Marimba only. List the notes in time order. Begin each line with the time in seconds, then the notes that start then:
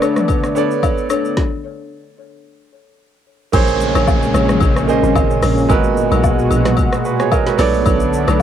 0.02 D4 A4 C#5
0.56 D4 A4 C#5
1.10 D4 A4 C#5